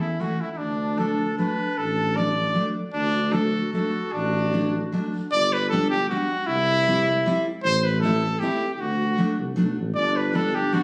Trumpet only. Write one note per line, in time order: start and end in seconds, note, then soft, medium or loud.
0.00 0.22 E4 medium
0.21 0.43 F#4 medium
0.41 0.51 E4 medium
0.52 0.59 E4 medium
0.57 1.00 D4 medium
0.99 1.38 A4 medium
1.39 1.79 B4 medium
1.78 2.18 A4 medium
2.17 2.76 D5 medium
2.93 3.35 D4 medium
3.33 3.72 A4 medium
3.73 4.14 A4 medium
4.13 4.93 D4 medium
5.32 5.55 D5 loud
5.53 5.69 B4 medium
5.69 5.89 A4 medium
5.90 6.08 G4 medium
6.09 6.48 F#4 medium
6.47 7.45 E4 loud
7.64 7.86 C5 loud
7.84 8.00 B4 medium
8.00 8.41 A4 loud
8.40 8.72 G4 medium
8.74 8.82 G4 medium
8.80 9.39 F#4 medium
9.95 10.18 D5 medium
10.16 10.37 B4 medium
10.36 10.57 A4 medium
10.55 10.75 G4 medium
10.74 10.83 F#4 medium